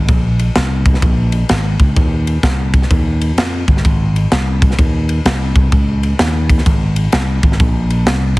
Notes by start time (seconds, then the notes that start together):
0.08 A#1, kick, ride
0.39 ride
0.56 C2, snare, ride
0.86 kick, ride
0.94 snare
1.02 A#1, kick, ride
1.32 ride
1.49 G#1, snare, ride
1.80 C#2, kick, ride
1.96 D#2, kick, ride
2.27 ride
2.43 C2, kick, snare, ride
2.74 kick, ride
2.82 snare
2.91 D#2, kick, ride
3.21 ride
3.38 F2, snare, ride
3.68 G1, kick, ride
3.77 snare
3.85 G#1, kick, ride
4.16 ride
4.32 C2, snare, ride
4.62 kick, ride
4.71 snare
4.79 D#2, kick, ride
5.09 ride
5.25 C2, snare, ride
5.56 C2, kick, ride
5.72 C#2, kick, ride
6.03 ride
6.19 D#2, snare, ride
6.50 kick, ride
6.58 snare
6.66 G#1, kick, ride
6.96 ride
7.12 C2, snare, ride
7.43 G#1, kick, ride
7.52 snare
7.60 A#1, kick, ride
7.90 ride
8.07 C2, snare, ride